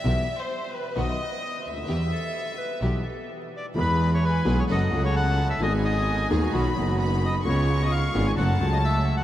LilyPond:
<<
  \new Staff \with { instrumentName = "Violin section" } { \time 4/4 \key e \minor \tempo 4 = 130 e''8. c''8. b'8 dis''4. e''8~ | e''2. r4 | \key e \major b''4 gis''4 fis''4 a''4 | gis''2 b''4 b''4 |
cis'''2 a''2 | }
  \new Staff \with { instrumentName = "Bandoneon" } { \time 4/4 \key e \minor r1 | r2. r8 d''8 | \key e \major b'8. cis''16 b'8. cis''16 dis''8. cis''16 fis''8. e''16 | dis''8 dis''4 r2 dis''8 |
cis''8. dis''16 eis''8. gis''16 fis''8. dis''16 e''8. fis''16 | }
  \new Staff \with { instrumentName = "Clarinet" } { \time 4/4 \key e \minor r1 | r8 a'4 b'8 g'8 a'8 r4 | \key e \major r1 | r4. gis'16 fis'8 fis'4 r8. |
r1 | }
  \new Staff \with { instrumentName = "String section" } { \time 4/4 \key e \minor <b e' g'>8 r4. <b dis' fis'>8 r4. | <b e' g'>8 r4. <b e' g'>8 r4. | \key e \major <b e' gis'>4. <b e' gis'>8 <cis' fis' a'>8 <cis' fis' a'>4. | <b dis' gis'>4. <b dis' gis'>8 <b dis' fis'>8 <b dis' fis'>4. |
<b cis' eis'>4. <b cis' eis'>8 <a cis' fis'>8 <a cis' fis'>4. | }
  \new Staff \with { instrumentName = "Upright piano" } { \clef bass \time 4/4 \key e \minor <b,, b, e g b g'>8 r4. <b,, b, dis fis b fis'>8 r4 r32 cis,32 d,32 dis,32 | <e, e g b g'>8 r4. <b,, b, e g b g'>8 r4. | \key e \major <e, e gis b gis'>4. <b,, b, e gis b gis'>8 <fis, fis a cis' a'>8 <cis, cis fis a cis' a'>4. | <gis,, gis, dis gis b gis'>4. <dis,, dis, dis gis b gis'>8 <b,, b, dis fis b fis'>8 <fis,, fis, dis fis b fis'>4. |
<cis, cis gis b eis'>4. <gis,, gis, cis gis b eis'>8 <fis, cis fis a fis'>8 <cis, cis fis a fis'>4. | }
  \new Staff \with { instrumentName = "Double bass" } { \clef bass \time 4/4 \key e \minor b,,8 r4. b,,8 r4 d,8 | e,8 r4. b,,8 r4. | \key e \major e,4. b,,8 fis,,8 cis,4. | gis,,4. dis,8 b,,8 fis,,4. |
cis,4. gis,,8 fis,,8 cis,4. | }
>>